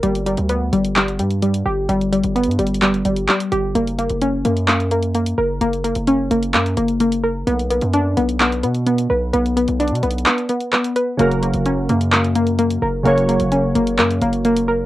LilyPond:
<<
  \new Staff \with { instrumentName = "Synth keys" } { \time 4/4 \key fis \phrygian \tempo 4 = 129 r1 | r1 | r1 | r1 |
r1 | r1 | <cis fis ais fis' ais'>1 | <cis fis ais fis' cis''>1 | }
  \new Staff \with { instrumentName = "Synth pluck" } { \time 4/4 \key fis \phrygian g8 g8 b8 g8 g8 g8 g8 g'8 | g8 g8 b8 g8 g8 g8 g8 g'8 | ais8 ais8 cis'8 ais8 ais8 ais8 ais8 ais'8 | ais8 ais8 cis'8 ais8 ais8 ais8 ais8 ais'8 |
b8 b8 d'8 b8 b8 b8 b8 b'8 | b8 b8 d'8 b8 b8 b8 b8 b'8 | ais8 ais8 cis'8 ais8 ais8 ais8 ais8 ais'8 | ais8 ais8 cis'8 ais8 ais8 ais8 ais8 ais'8 | }
  \new Staff \with { instrumentName = "808-style bass" } { \clef bass \time 4/4 \key fis \phrygian g,,8. d,8. g,,4 g,4 g,,8 | g,,8. g,,8 g,16 g,,4 g,,8 r8 g,,8 | fis,,8. fis,,8. fis,2 fis,,8 | fis,,8. fis,,8. fis,,8 fis,8 fis,,4. |
b,,8. fis,8. b,,4 b,4 b,,8 | b,,8. b,,8 b,16 b,,8 r2 | fis,,8. fis,,8. fis,2 fis,,8 | fis,,8. fis,,8. fis,,8 fis,8 fis,,4. | }
  \new DrumStaff \with { instrumentName = "Drums" } \drummode { \time 4/4 hh16 hh16 hh16 hh16 hh8 hh16 hh16 <hc hh>16 hh16 hh16 hh16 hh16 hh8. | hh16 hh16 hh16 hh16 \tuplet 3/2 { hh16 hh16 hh16 hh16 hh16 hh16 } <hc hh>16 hh16 hh16 hh16 <hc hh>16 hh16 hh8 | hh16 hh16 hh16 hh16 hh8 hh16 hh16 <hc hh>16 hh16 hh16 hh16 hh16 hh8. | hh16 hh16 hh16 hh16 hh8 hh16 hh16 <hc hh>16 hh16 hh16 hh16 hh16 hh8. |
hh16 hh16 hh16 hh16 hh8 hh16 hh16 <hc hh>16 hh16 hh16 hh16 hh16 hh8. | hh16 hh16 hh16 hh16 \tuplet 3/2 { hh16 hh16 hh16 hh16 hh16 hh16 } <hc hh>16 hh16 hh16 hh16 <hc hh>16 hh16 hh8 | hh16 hh16 hh16 hh16 hh8 hh16 hh16 <hc hh>16 hh16 hh16 hh16 hh16 hh8. | hh16 hh16 hh16 hh16 hh8 hh16 hh16 <hc hh>16 hh16 hh16 hh16 hh16 hh8. | }
>>